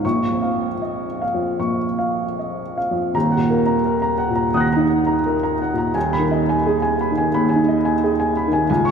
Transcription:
0.05 1.58 A#1 soft
0.05 0.67 C#6 medium
0.31 0.72 F2 soft
0.42 1.06 F5 soft
0.82 1.22 D#5 soft
1.22 1.85 F5 soft
1.34 1.77 F2 soft
1.59 3.10 A#1 soft
1.59 2.23 C#6 soft
1.99 2.61 F5 soft
2.39 2.78 D#5 soft
2.78 3.15 F5 soft
2.91 3.15 F2 soft
3.14 4.50 D#1 soft
3.14 4.50 D#2 medium
3.14 3.43 A#5 medium
3.32 3.60 F#5 soft
3.38 3.75 A#2 soft
3.50 3.78 A#4 soft
3.66 3.95 A#5 soft
3.85 4.13 A#4 soft
4.02 4.30 A#5 medium
4.18 4.47 F#5 soft
4.30 4.68 A#2 soft
4.36 4.64 A#5 soft
4.54 5.91 D#2 medium
4.54 4.83 F#5 medium
4.54 5.91 D#6 soft
4.54 5.92 F#6 soft
4.60 5.94 A#6 soft
4.73 5.15 D#4 soft
4.73 5.01 A#5 medium
4.89 5.18 F#5 soft
5.07 5.35 A#5 medium
5.26 5.54 A#4 medium
5.43 5.71 A#5 medium
5.62 5.89 F#5 soft
5.74 5.96 A#2 soft
5.78 5.95 A#5 soft
5.93 7.29 D#1 medium
5.93 7.30 D#2 medium
5.93 6.23 G#5 soft
6.13 6.41 B5 medium
6.19 6.56 D#3 soft
6.31 6.59 D#5 soft
6.49 6.76 G#5 medium
6.67 6.93 G#4 medium
6.82 7.10 G#5 medium
7.01 7.27 B5 soft
7.12 7.48 D#3 soft
7.17 7.44 G#5 medium
7.34 8.66 D#2 medium
7.34 7.61 B5 medium
7.49 7.77 G#5 soft
7.56 7.92 D#4 soft
7.68 7.95 D#5 medium
7.85 8.12 G#5 medium
8.04 8.30 G#4 medium
8.20 8.46 G#5 medium
8.37 8.63 B5 soft
8.48 8.70 D#3 soft
8.53 8.68 G#5 medium
8.70 8.91 C#2 medium
8.70 8.91 G#5 medium
8.85 8.91 C#6 medium

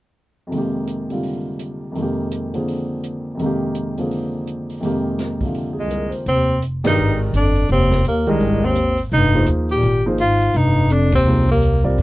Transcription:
0.47 1.90 F2 soft
0.47 1.08 C3 soft
0.52 1.94 D#3 soft
0.52 1.96 G#3 soft
0.52 open hi-hat soft
0.56 1.98 A#3 soft
0.56 1.99 G4 soft
0.87 closed hi-hat soft
1.10 1.92 C3 soft
1.10 1.96 D3 soft
1.10 1.97 G3 soft
1.10 1.97 F4 soft
1.10 open hi-hat soft
1.23 open hi-hat soft
1.59 closed hi-hat soft
1.92 3.33 F2 soft
1.92 3.36 C3 soft
1.92 open hi-hat soft
1.96 3.38 D#3 soft
1.96 3.40 G#3 soft
2.00 2.53 A#3 soft
2.00 3.43 G4 soft
2.32 closed hi-hat soft
2.54 3.39 D3 soft
2.54 3.40 F3 soft
2.54 3.40 A#3 soft
2.54 3.40 C4 soft
2.54 3.41 G#4 soft
2.54 open hi-hat soft
2.68 open hi-hat soft
3.04 closed hi-hat soft
3.35 4.79 F2 soft
3.35 4.80 C3 soft
3.39 4.80 D#3 soft
3.39 4.81 G#3 soft
3.39 open hi-hat soft
3.44 3.98 A#3 soft
3.44 4.83 G4 medium
3.75 closed hi-hat soft
3.98 4.82 D3 soft
3.98 4.82 F3 soft
3.98 4.83 A#3 soft
3.98 4.83 C4 soft
3.98 4.84 G#4 soft
3.98 open hi-hat soft
4.11 open hi-hat soft
4.47 closed hi-hat soft
4.70 open hi-hat soft
4.80 6.25 F2 soft
4.80 5.41 C3 soft
4.80 6.25 D#3 soft
4.80 6.26 G#3 soft
4.80 6.27 A#3 soft
4.80 open hi-hat soft
4.85 6.27 G4 medium
5.19 snare soft
5.19 closed hi-hat soft
5.41 6.26 C3 soft
5.41 6.26 D3 soft
5.41 6.27 F3 soft
5.41 kick soft
5.41 open hi-hat soft
5.45 6.27 F4 soft
5.55 open hi-hat soft
5.73 5.98 G#4 soft
5.78 6.11 C2 medium
5.78 6.12 G#3 medium
5.90 6.18 A#4 soft
5.90 closed hi-hat soft
6.09 6.33 C5 soft
6.09 open hi-hat soft
6.26 6.94 F1 medium
6.26 6.59 D#2 medium
6.26 6.60 C4 medium
6.26 open hi-hat soft
6.62 closed hi-hat soft
6.84 7.18 G2 medium
6.84 7.31 D#3 medium
6.84 7.19 D#4 medium
6.84 7.31 G4 medium
6.84 7.31 G#4 medium
6.84 7.31 A#4 medium
6.84 7.31 D5 medium
6.84 snare medium
6.84 ride medium
6.97 7.30 G#1 medium
7.33 7.67 G1 medium
7.33 7.67 F2 medium
7.33 7.68 D4 medium
7.33 closed hi-hat soft
7.56 open hi-hat soft
7.69 8.02 F1 medium
7.69 8.03 D#2 medium
7.69 8.04 C4 medium
7.69 open hi-hat soft
7.91 snare soft
8.04 8.38 D#2 medium
8.04 8.28 D#2 medium
8.04 8.31 A#3 medium
8.04 closed hi-hat soft
8.27 8.65 C2 medium
8.27 8.74 D#3 medium
8.27 8.74 G#3 medium
8.27 8.66 G#3 medium
8.27 8.74 D4 medium
8.27 8.74 G4 medium
8.27 8.74 A#4 medium
8.27 open hi-hat soft
8.40 9.08 G#1 medium
8.40 open hi-hat soft
8.63 8.99 D#2 medium
8.63 9.00 C4 medium
8.76 closed hi-hat soft
8.98 open hi-hat soft
9.12 9.45 F1 medium
9.12 9.45 G2 medium
9.12 9.46 D#4 loud
9.12 open hi-hat soft
9.34 9.81 F3 medium
9.34 9.81 A#3 medium
9.34 9.81 D#4 medium
9.34 9.81 G#4 medium
9.34 9.81 C5 medium
9.46 9.81 D#2 medium
9.46 closed hi-hat medium
9.69 10.04 A#2 medium
9.69 10.04 G4 medium
9.69 open hi-hat soft
9.83 10.51 G#1 medium
9.83 open hi-hat soft
10.06 10.18 F3 medium
10.06 10.18 A#3 medium
10.06 10.18 D#4 medium
10.06 10.18 G#4 medium
10.06 10.18 C5 medium
10.18 10.56 G#2 medium
10.18 10.58 F4 medium
10.18 closed hi-hat soft
10.41 open hi-hat soft
10.54 11.23 F1 medium
10.54 10.92 G2 medium
10.54 10.94 D#4 medium
10.54 open hi-hat soft
10.90 11.13 F2 medium
10.90 11.14 D4 medium
10.90 closed hi-hat soft
11.12 11.47 D#2 medium
11.12 11.48 C4 medium
11.12 kick medium
11.12 ride medium
11.25 11.94 C2 medium
11.25 11.47 F3 soft
11.25 11.47 A#3 soft
11.25 11.47 D#4 soft
11.25 11.47 G#4 soft
11.25 11.47 C5 medium
11.50 11.83 D#2 medium
11.50 11.84 A#3 medium
11.62 closed hi-hat soft
11.84 11.96 G3 medium
11.84 11.97 C4 medium
11.84 11.97 F4 medium
11.84 11.97 A#4 soft
11.84 11.97 D5 medium
11.84 kick soft
11.98 12.02 F2 medium
11.98 open hi-hat soft

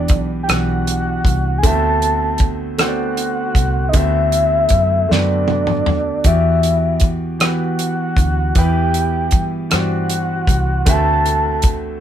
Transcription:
0.00 0.11 E1 medium
0.00 0.48 E3 medium
0.00 0.48 B3 medium
0.00 0.49 D4 medium
0.00 0.50 G4 medium
0.00 0.20 B4 medium
0.00 0.21 D5 medium
0.00 0.50 F#5 medium
0.08 0.45 B1 medium
0.08 kick medium
0.08 closed hi-hat soft
0.43 0.52 G5 medium
0.48 1.22 B1 medium
0.48 1.34 E3 medium
0.48 1.34 B3 medium
0.48 1.35 D4 soft
0.48 1.35 G4 medium
0.48 1.60 F#5 medium
0.48 1.35 F#5 medium
0.48 cross-stick loud
0.48 closed hi-hat medium
0.87 closed hi-hat medium
1.25 1.60 C2 medium
1.25 kick medium
1.25 closed hi-hat soft
1.58 1.67 G#5 medium
1.63 3.52 D2 medium
1.63 2.49 D3 medium
1.63 2.49 A3 medium
1.63 2.50 B3 medium
1.63 2.50 C4 medium
1.63 2.50 F#4 medium
1.63 2.51 E5 medium
1.63 2.42 A5 loud
1.63 kick medium
1.63 closed hi-hat medium
2.02 closed hi-hat soft
2.38 kick medium
2.38 closed hi-hat soft
2.78 3.64 D3 medium
2.78 3.65 A3 medium
2.78 3.65 B3 medium
2.78 3.65 C4 medium
2.78 3.66 F#4 medium
2.78 2.87 C5 medium
2.78 3.90 F#5 medium
2.78 cross-stick medium
2.78 closed hi-hat medium
2.88 3.69 D5 medium
3.17 closed hi-hat medium
3.55 3.90 C2 medium
3.55 kick medium
3.55 closed hi-hat soft
3.89 3.97 D#5 medium
3.93 4.67 D2 medium
3.93 4.80 D3 medium
3.93 4.80 A3 medium
3.93 4.80 B3 medium
3.93 4.80 C4 medium
3.93 4.81 F#4 medium
3.93 5.13 E5 loud
3.93 4.81 E5 medium
3.93 kick medium
3.93 closed hi-hat medium
4.32 closed hi-hat soft
4.69 5.06 F#2 medium
4.69 kick medium
4.69 closed hi-hat soft
5.09 5.88 F#2 medium
5.09 5.95 D3 medium
5.09 5.95 A3 medium
5.09 5.96 B3 medium
5.09 5.96 C4 medium
5.09 5.96 F#4 medium
5.09 5.17 A4 medium
5.09 6.28 D5 medium
5.09 snare soft
5.18 6.00 B4 medium
5.48 high tom medium
5.67 mid tom medium
5.86 6.22 D2 medium
5.86 mid tom medium
6.24 8.13 E2 medium
6.24 7.11 E3 medium
6.24 7.11 B3 medium
6.24 7.11 F#4 medium
6.24 7.12 G4 medium
6.24 7.12 D5 medium
6.24 7.03 E5 medium
6.24 kick medium
6.24 closed hi-hat medium
6.63 closed hi-hat soft
7.00 kick medium
7.00 closed hi-hat soft
7.39 8.26 E3 medium
7.39 8.26 B3 medium
7.39 8.27 F#4 medium
7.39 8.27 G4 soft
7.39 8.28 B4 medium
7.39 8.59 F#5 medium
7.39 cross-stick medium
7.39 closed hi-hat medium
7.79 closed hi-hat medium
8.17 8.52 D2 medium
8.17 kick medium
8.17 closed hi-hat soft
8.55 9.33 E2 medium
8.55 9.41 E3 medium
8.55 9.42 B3 medium
8.55 9.42 E4 medium
8.55 9.43 G4 medium
8.55 9.43 B4 medium
8.55 9.43 G5 medium
8.55 kick medium
8.55 closed hi-hat medium
8.94 closed hi-hat soft
9.31 9.68 G2 medium
9.31 kick medium
9.31 closed hi-hat soft
9.70 10.45 G2 medium
9.70 10.56 E3 medium
9.70 10.57 B3 medium
9.70 10.57 F#4 medium
9.70 10.58 G4 medium
9.70 9.79 C5 medium
9.70 cross-stick loud
9.70 closed hi-hat medium
9.74 10.91 F#5 medium
9.80 10.61 D5 medium
10.10 closed hi-hat medium
10.47 10.83 C2 medium
10.47 kick medium
10.47 closed hi-hat soft
10.85 12.00 D2 medium
10.85 11.72 D3 medium
10.85 11.72 A3 medium
10.85 11.73 C4 medium
10.85 11.73 F#4 medium
10.85 11.73 B4 medium
10.85 11.74 E5 medium
10.85 kick loud
10.85 closed hi-hat medium
10.90 11.65 A5 loud
11.26 closed hi-hat soft
11.62 kick medium
11.62 closed hi-hat soft

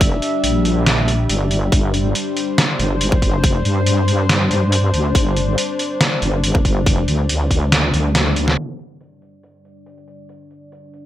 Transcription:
0.00 0.21 F#1 loud
0.00 8.54 G3 medium
0.00 8.54 D4 medium
0.00 1.70 E5 medium
0.00 kick loud
0.00 closed hi-hat medium
0.22 closed hi-hat medium
0.44 1.28 A#1 loud
0.44 closed hi-hat medium
0.65 closed hi-hat soft
0.86 snare loud
0.86 closed hi-hat medium
1.08 closed hi-hat medium
1.29 1.71 G1 loud
1.29 closed hi-hat medium
1.51 closed hi-hat medium
1.72 2.13 G1 loud
1.72 8.56 C5 medium
1.72 kick loud
1.72 closed hi-hat medium
1.94 closed hi-hat soft
2.15 closed hi-hat medium
2.37 closed hi-hat medium
2.58 snare loud
2.58 closed hi-hat medium
2.79 3.38 G1 loud
2.79 closed hi-hat medium
3.01 closed hi-hat medium
3.12 kick loud
3.22 kick medium
3.22 closed hi-hat medium
3.38 3.63 F#1 loud
3.44 kick loud
3.44 closed hi-hat medium
3.65 4.49 G2 medium
3.65 closed hi-hat soft
3.87 closed hi-hat medium
4.08 closed hi-hat medium
4.29 snare loud
4.29 closed hi-hat medium
4.51 4.92 G2 loud
4.51 closed hi-hat medium
4.72 closed hi-hat medium
4.94 5.14 D2 loud
4.94 closed hi-hat medium
5.15 5.56 G1 loud
5.15 kick loud
5.15 closed hi-hat medium
5.37 closed hi-hat medium
5.58 closed hi-hat medium
5.79 closed hi-hat medium
6.01 snare loud
6.01 closed hi-hat medium
6.22 6.81 G1 loud
6.22 closed hi-hat medium
6.44 closed hi-hat medium
6.55 kick loud
6.65 kick medium
6.65 closed hi-hat medium
6.81 7.06 F#1 loud
6.86 kick loud
6.86 closed hi-hat medium
7.08 7.92 D2 loud
7.08 closed hi-hat medium
7.29 closed hi-hat medium
7.51 kick medium
7.51 closed hi-hat medium
7.72 snare loud
7.72 closed hi-hat medium
7.94 8.56 D2 loud
7.94 closed hi-hat medium
8.15 snare loud
8.15 closed hi-hat medium
8.36 closed hi-hat medium
8.48 snare medium
8.58 11.06 G3 medium
8.58 11.06 D4 medium
8.58 11.06 D5 medium
8.58 closed hi-hat medium
8.79 closed hi-hat soft
9.01 closed hi-hat medium
9.22 closed hi-hat medium
9.43 closed hi-hat medium
9.65 closed hi-hat medium
9.86 closed hi-hat medium
9.98 closed hi-hat soft
10.08 closed hi-hat medium
10.29 closed hi-hat medium
10.51 closed hi-hat soft
10.72 closed hi-hat medium
10.94 closed hi-hat medium

